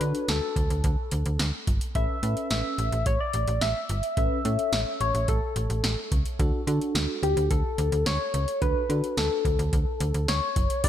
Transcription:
0.00 0.13 D3 loud
0.00 0.86 D4 medium
0.00 0.86 F#4 medium
0.00 0.86 A4 medium
0.00 0.31 B4 loud
0.00 closed hi-hat medium
0.15 closed hi-hat soft
0.28 0.41 D2 medium
0.28 1.40 A4 medium
0.28 snare loud
0.28 closed hi-hat medium
0.56 0.68 D2 medium
0.56 kick medium
0.56 closed hi-hat medium
0.70 0.82 D2 medium
0.70 closed hi-hat medium
0.84 0.96 D2 loud
0.84 kick medium
0.84 closed hi-hat medium
1.11 1.24 D2 medium
1.11 closed hi-hat medium
1.26 1.38 D2 medium
1.26 closed hi-hat medium
1.39 1.52 D2 loud
1.39 snare loud
1.39 closed hi-hat medium
1.67 1.79 G1 medium
1.67 kick medium
1.67 closed hi-hat medium
1.81 closed hi-hat medium
1.95 2.07 A1 loud
1.95 2.17 C#4 medium
1.95 2.17 A4 medium
1.95 2.17 B4 medium
1.95 2.47 E5 loud
1.95 kick loud
1.95 closed hi-hat medium
2.23 2.35 A2 medium
2.23 3.09 C#4 medium
2.23 3.09 A4 medium
2.23 3.09 B4 medium
2.23 closed hi-hat medium
2.37 closed hi-hat soft
2.50 2.63 A1 loud
2.50 3.08 E5 loud
2.50 snare loud
2.50 closed hi-hat medium
2.78 2.90 A1 loud
2.78 closed hi-hat medium
2.92 3.04 A1 medium
2.92 closed hi-hat medium
3.06 3.18 A1 loud
3.06 3.22 C#5 loud
3.06 kick medium
3.06 closed hi-hat medium
3.21 3.63 D5 loud
3.33 3.46 A1 medium
3.33 closed hi-hat medium
3.48 3.60 A1 loud
3.48 closed hi-hat medium
3.61 3.74 A1 loud
3.61 4.17 E5 loud
3.61 snare loud
3.61 closed hi-hat medium
3.89 4.02 G1 loud
3.89 closed hi-hat medium
4.03 closed hi-hat medium
4.17 4.29 A1 loud
4.17 4.39 C#4 medium
4.17 4.39 A4 medium
4.17 4.39 B4 medium
4.17 5.02 E5 loud
4.17 kick loud
4.17 closed hi-hat medium
4.45 4.57 A2 loud
4.45 5.31 C#4 medium
4.45 5.31 A4 medium
4.45 5.31 C#5 medium
4.45 closed hi-hat medium
4.59 closed hi-hat soft
4.73 4.85 A1 loud
4.73 snare loud
4.73 closed hi-hat medium
5.01 5.13 A1 medium
5.01 5.30 C#5 loud
5.01 closed hi-hat medium
5.14 5.27 A1 loud
5.14 closed hi-hat medium
5.28 5.40 A1 loud
5.28 6.12 A4 medium
5.28 kick medium
5.28 closed hi-hat medium
5.56 5.68 A1 loud
5.56 closed hi-hat medium
5.70 5.82 A1 loud
5.70 closed hi-hat medium
5.84 5.96 A1 loud
5.84 snare loud
5.84 closed hi-hat medium
6.12 6.24 C#2 medium
6.12 kick medium
6.12 closed hi-hat medium
6.26 closed hi-hat medium
6.39 6.52 D2 loud
6.39 6.61 D4 medium
6.39 6.61 F#4 medium
6.39 6.61 A4 medium
6.39 kick loud
6.39 closed hi-hat medium
6.67 6.79 D3 loud
6.67 7.53 D4 medium
6.67 7.53 F#4 medium
6.67 7.53 A4 medium
6.67 closed hi-hat medium
6.81 closed hi-hat soft
6.95 7.07 D2 loud
6.95 snare loud
6.95 closed hi-hat medium
7.23 7.35 D2 medium
7.23 7.49 G4 medium
7.23 closed hi-hat medium
7.37 7.49 D2 medium
7.37 closed hi-hat medium
7.51 7.63 D2 loud
7.51 8.08 A4 loud
7.51 kick medium
7.51 closed hi-hat medium
7.78 7.90 D2 loud
7.78 closed hi-hat medium
7.92 8.04 D2 medium
7.92 closed hi-hat medium
8.06 8.18 D2 loud
8.06 8.63 C#5 loud
8.06 snare loud
8.06 closed hi-hat medium
8.34 8.46 C#2 loud
8.34 closed hi-hat medium
8.48 closed hi-hat medium
8.62 8.74 D2 loud
8.62 8.83 D4 medium
8.62 8.83 F#4 medium
8.62 8.83 A4 medium
8.62 9.19 B4 loud
8.62 kick loud
8.62 closed hi-hat medium
8.89 9.02 D3 loud
8.89 9.75 D4 medium
8.89 9.75 F#4 medium
8.89 9.75 A4 medium
8.89 closed hi-hat medium
9.04 closed hi-hat soft
9.17 9.29 D2 medium
9.17 10.28 A4 medium
9.17 snare loud
9.17 closed hi-hat medium
9.45 9.57 D2 loud
9.45 kick medium
9.45 closed hi-hat medium
9.59 9.71 D2 loud
9.59 closed hi-hat medium
9.73 9.85 D2 loud
9.73 kick medium
9.73 closed hi-hat medium
10.00 10.13 D2 loud
10.00 closed hi-hat medium
10.14 10.27 D2 medium
10.14 closed hi-hat medium
10.28 10.41 D2 loud
10.28 10.86 C#5 loud
10.28 snare loud
10.28 closed hi-hat medium
10.56 10.68 F#1 medium
10.56 kick medium
10.56 closed hi-hat medium
10.70 closed hi-hat medium
10.84 10.89 G1 loud
10.84 10.89 D3 medium
10.84 10.89 G3 medium
10.84 10.89 B3 medium
10.84 10.89 D4 medium
10.84 10.89 G4 medium
10.84 10.89 B4 medium
10.84 10.89 D5 loud
10.84 kick loud
10.84 closed hi-hat medium
10.84 crash loud

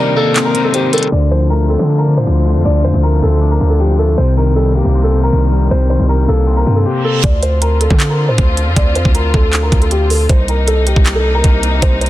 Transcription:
0.00 0.54 C3 loud
0.00 1.09 C3 medium
0.00 0.73 D#3 medium
0.00 0.16 G3 medium
0.00 1.09 A#3 medium
0.00 1.09 D#4 medium
0.00 0.12 A#4 medium
0.00 0.32 D5 medium
0.17 0.93 A#3 medium
0.17 0.44 A4 loud
0.36 1.12 C4 medium
0.36 clap loud
0.36 closed hi-hat medium
0.45 0.60 A#4 medium
0.55 1.12 C3 medium
0.55 closed hi-hat medium
0.64 0.72 A4 medium
0.74 1.12 D#3 medium
0.74 0.89 G4 medium
0.74 0.92 C5 medium
0.74 closed hi-hat medium
0.93 1.12 G3 medium
0.93 1.08 A4 medium
0.93 1.11 A#4 medium
0.93 closed hi-hat medium
0.93 open hi-hat medium
0.98 closed hi-hat medium
1.03 closed hi-hat medium
1.07 closed hi-hat medium
1.12 1.76 D2 loud
1.12 4.15 D3 medium
1.12 2.06 D3 medium
1.12 6.82 C4 medium
1.12 4.15 F4 medium
1.12 1.27 D5 medium
1.31 2.26 F3 medium
1.31 1.46 C5 medium
1.50 2.45 A3 medium
1.50 1.65 A#4 medium
1.69 1.88 C4 medium
1.69 1.97 A4 medium
1.79 2.19 D3 loud
1.89 2.84 D4 medium
1.98 2.13 A#4 medium
2.08 2.64 D3 medium
2.17 2.26 A2 medium
2.17 2.62 C5 medium
2.27 2.57 D2 loud
2.27 2.83 F3 medium
2.46 3.02 A3 medium
2.56 2.65 F2 loud
2.65 2.86 D2 loud
2.65 3.59 D3 loud
2.65 2.80 D5 medium
2.84 2.93 F2 medium
2.84 3.79 F3 medium
2.84 2.99 C5 medium
2.94 3.21 D2 loud
3.03 3.98 A3 medium
3.03 3.18 A#4 medium
3.22 3.59 D2 loud
3.22 3.41 C4 medium
3.22 3.50 A4 medium
3.42 4.18 D4 loud
3.51 3.66 A#4 medium
3.60 4.16 D2 loud
3.60 4.18 D3 medium
3.70 3.77 A4 medium
3.80 4.18 F3 medium
3.80 3.95 G4 medium
3.99 4.18 A3 medium
3.99 4.14 A4 medium
4.18 4.82 C2 loud
4.18 5.12 C3 medium
4.18 6.83 D#3 medium
4.18 6.83 A#4 medium
4.18 4.32 C5 medium
4.37 5.31 D#3 medium
4.37 4.52 A#4 medium
4.56 4.74 G3 medium
4.56 4.71 A4 medium
4.75 5.51 A#3 medium
4.75 5.02 G4 medium
4.85 5.31 C2 loud
4.95 5.90 C4 medium
5.04 5.19 A4 medium
5.13 5.70 C3 medium
5.23 5.68 A#4 medium
5.32 5.69 C2 loud
5.32 5.89 D#3 medium
5.52 6.08 G3 medium
5.71 5.98 C2 loud
5.71 6.65 C3 loud
5.71 5.86 C5 medium
5.90 6.86 D#3 medium
5.90 6.05 C5 medium
5.99 6.27 C2 loud
6.09 6.28 G3 medium
6.09 6.24 A#4 medium
6.28 6.65 C2 loud
6.28 7.24 A#3 medium
6.28 6.55 A4 medium
6.47 7.24 C4 medium
6.47 reverse cymbal medium
6.57 6.72 A#4 medium
6.66 6.85 G2 loud
6.66 7.24 C3 medium
6.76 6.83 A4 medium
6.86 7.00 G4 medium
7.05 7.19 A4 medium
7.24 7.88 D2 loud
7.24 10.26 D3 medium
7.24 10.26 C4 medium
7.24 10.26 F4 medium
7.24 7.38 D5 medium
7.24 kick loud
7.24 closed hi-hat medium
7.43 7.58 C5 medium
7.43 closed hi-hat medium
7.62 7.77 A#4 medium
7.62 closed hi-hat medium
7.81 8.08 A4 medium
7.81 closed hi-hat medium
7.90 8.30 D3 loud
7.90 kick medium
8.00 clap loud
8.00 closed hi-hat medium
8.10 8.24 A#4 medium
8.29 8.38 A2 loud
8.29 8.74 C5 medium
8.38 8.68 D2 loud
8.38 kick loud
8.38 closed hi-hat medium
8.57 closed hi-hat medium
8.67 8.76 F2 loud
8.76 8.97 D2 loud
8.76 8.91 D5 medium
8.76 kick loud
8.76 closed hi-hat medium
8.95 9.05 F2 loud
8.95 9.10 C5 medium
8.95 closed hi-hat medium
9.05 9.33 D2 loud
9.05 kick loud
9.15 9.30 A#4 medium
9.15 closed hi-hat medium
9.34 9.71 D2 loud
9.34 9.61 A4 medium
9.34 kick loud
9.53 clap loud
9.53 closed hi-hat medium
9.63 9.77 A#4 medium
9.72 10.27 D2 loud
9.72 kick loud
9.72 closed hi-hat medium
9.82 9.89 A4 medium
9.82 closed hi-hat medium
9.91 10.06 G4 medium
9.91 closed hi-hat medium
10.10 10.25 A4 medium
10.10 open hi-hat medium
10.29 10.94 C2 loud
10.29 12.10 C3 medium
10.29 12.10 A#3 medium
10.29 12.10 D#4 medium
10.29 10.44 C5 medium
10.29 kick loud
10.29 closed hi-hat medium
10.48 10.64 A#4 medium
10.48 closed hi-hat medium
10.68 10.82 A4 medium
10.68 closed hi-hat medium
10.87 11.14 G4 medium
10.87 closed hi-hat medium
10.96 11.42 C2 loud
10.96 kick loud
11.06 clap loud
11.06 closed hi-hat medium
11.15 11.30 A4 medium
11.35 11.80 A#4 medium
11.44 11.81 C2 loud
11.44 kick loud
11.44 closed hi-hat medium
11.63 closed hi-hat medium
11.82 12.10 C2 loud
11.82 11.97 C5 medium
11.82 kick loud
11.82 closed hi-hat medium
12.01 12.10 C5 medium
12.01 closed hi-hat medium
12.06 closed hi-hat medium

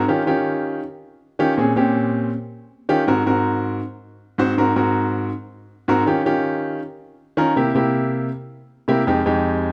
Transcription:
0.08 0.21 D#3 medium
0.08 0.21 C#4 medium
0.08 0.22 F4 medium
0.08 0.22 G4 medium
0.27 0.79 D#3 medium
0.27 0.79 C#4 medium
0.27 0.79 F4 medium
0.27 0.79 G4 medium
1.39 1.52 D#3 medium
1.39 1.52 C#4 medium
1.39 1.52 F4 medium
1.39 1.53 G4 loud
1.58 1.71 A#2 medium
1.58 1.71 C4 medium
1.58 1.71 C#4 medium
1.58 1.71 G#4 medium
1.76 2.29 A#2 medium
1.76 2.29 C4 medium
1.76 2.29 C#4 medium
1.76 2.29 G4 medium
2.89 3.02 D#3 medium
2.89 3.02 C#4 medium
2.89 3.02 F4 medium
2.89 3.02 G4 loud
3.07 3.21 G#2 medium
3.07 3.21 C4 medium
3.07 3.21 F#4 medium
3.07 3.21 A#4 loud
3.26 3.79 G#2 medium
3.26 3.79 C4 medium
3.26 3.79 F#4 medium
3.26 3.79 A#4 medium
4.38 4.52 G#2 medium
4.38 4.52 C4 medium
4.38 4.52 F#4 medium
4.38 4.52 C5 loud
4.58 4.71 G#2 medium
4.58 4.71 C4 medium
4.58 4.71 F#4 medium
4.58 4.71 A#4 loud
4.76 5.29 G#2 medium
4.76 5.29 C4 medium
4.76 5.29 F#4 medium
4.76 5.29 A#4 medium
5.88 6.01 G#2 medium
5.88 6.02 C4 medium
5.88 6.02 F#4 medium
5.88 6.02 A#4 loud
6.06 6.20 D#3 medium
6.06 6.20 C#4 medium
6.06 6.20 F4 medium
6.06 6.20 G4 loud
6.25 6.78 D#3 medium
6.25 6.79 C#4 medium
6.25 6.79 F4 medium
6.25 6.79 G4 loud
7.37 7.51 D#3 loud
7.37 7.51 C#4 medium
7.37 7.51 F4 medium
7.37 7.51 A#4 loud
7.56 7.70 C3 medium
7.56 7.70 A#3 medium
7.56 7.70 E4 medium
7.56 7.70 G4 medium
7.75 8.28 C3 medium
7.75 8.28 A#3 medium
7.75 8.28 E4 medium
7.75 8.28 G4 medium
8.88 9.01 C3 medium
8.88 9.01 A#3 medium
8.88 9.01 E4 medium
8.88 9.01 G4 loud
9.07 9.20 F2 medium
9.07 9.20 G#3 medium
9.07 9.20 D#4 medium
9.07 9.20 G4 medium
9.26 9.72 F2 medium
9.26 9.72 G#3 medium
9.26 9.72 D#4 medium
9.26 9.72 G4 medium

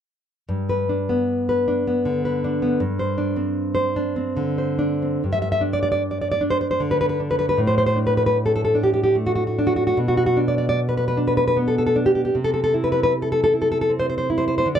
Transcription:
0.49 2.75 G2 medium
0.69 1.48 B4 soft
0.89 1.67 D4 soft
1.09 1.86 B3 soft
1.49 2.24 B4 soft
1.68 2.43 D4 soft
1.87 2.61 B3 soft
2.05 2.80 D3 soft
2.25 2.80 B4 soft
2.44 2.81 D4 soft
2.62 2.80 B3 soft
2.80 5.17 G2 medium
2.99 3.73 C5 soft
3.18 3.95 D4 soft
3.36 4.15 C4 soft
3.75 4.57 C5 medium
3.96 4.77 D4 soft
4.16 5.01 C4 soft
4.37 5.21 D3 soft
4.58 5.22 C5 soft
4.79 5.21 D4 soft
5.02 5.22 C4 soft
5.24 7.58 G2 soft
5.33 5.41 E5 medium
5.42 5.51 E5 medium
5.52 5.62 E5 medium
5.61 6.40 D4 soft
5.73 5.82 D5 soft
5.83 5.91 D5 soft
5.92 6.02 D5 medium
6.11 6.20 D5 soft
6.21 6.30 D5 soft
6.32 6.42 D5 medium
6.41 7.19 D4 soft
6.50 6.60 C5 medium
6.61 6.70 C5 medium
6.71 6.81 C5 medium
6.80 7.60 D3 soft
6.91 7.00 B4 medium
7.01 7.08 B4 medium
7.09 7.20 B4 medium
7.20 7.60 D4 soft
7.31 7.38 B4 medium
7.39 7.48 B4 medium
7.49 7.60 B4 medium
7.58 9.93 A2 soft
7.67 7.77 C5 medium
7.78 7.85 C5 medium
7.86 7.98 C5 medium
7.96 8.74 D4 soft
8.07 8.16 B4 medium
8.17 8.25 B4 medium
8.26 8.37 B4 medium
8.46 8.54 A4 medium
8.56 8.63 A4 medium
8.65 8.76 A4 medium
8.75 9.57 D4 soft
8.84 8.92 G4 soft
8.94 9.02 G4 medium
9.04 9.15 G4 medium
9.15 9.98 A3 soft
9.27 9.34 F#4 medium
9.35 9.46 F#4 medium
9.47 9.57 F#4 soft
9.59 9.99 D4 soft
9.67 9.75 F#4 medium
9.76 9.86 F#4 medium
9.87 9.98 F#4 medium
9.97 12.29 B2 medium
10.08 10.16 F#4 soft
10.17 10.25 F#4 medium
10.26 10.38 F#4 medium
10.37 11.16 D4 soft
10.48 10.57 D5 medium
10.58 10.68 D5 medium
10.69 10.79 D5 medium
10.89 10.96 B4 medium
10.97 11.07 B4 medium
11.08 11.18 B4 medium
11.17 11.95 D4 soft
11.28 11.36 B4 medium
11.37 11.46 B4 medium
11.48 11.57 B4 medium
11.57 12.34 B3 soft
11.68 11.77 A4 medium
11.78 11.85 A4 medium
11.87 11.96 A4 medium
11.96 12.34 D4 soft
12.06 12.14 G4 medium
12.15 12.24 G4 medium
12.25 12.34 G4 medium
12.35 14.64 C3 medium
12.44 12.52 A4 medium
12.54 12.63 A4 medium
12.64 12.73 A4 medium
12.74 13.52 E4 soft
12.84 12.91 B4 medium
12.92 13.02 B4 medium
13.03 13.13 B4 medium
13.22 13.31 A4 medium
13.32 13.42 A4 medium
13.44 13.52 A4 medium
13.53 14.29 E4 soft
13.62 13.70 A4 medium
13.72 13.80 A4 medium
13.81 13.91 A4 medium
13.89 14.67 C4 soft
14.00 14.08 C5 medium
14.10 14.17 C5 medium
14.18 14.29 C5 medium
14.30 14.68 E4 soft
14.38 14.47 C5 medium
14.48 14.57 C5 medium
14.58 14.67 C5 medium
14.66 14.79 D3 medium
14.75 14.79 D5 medium

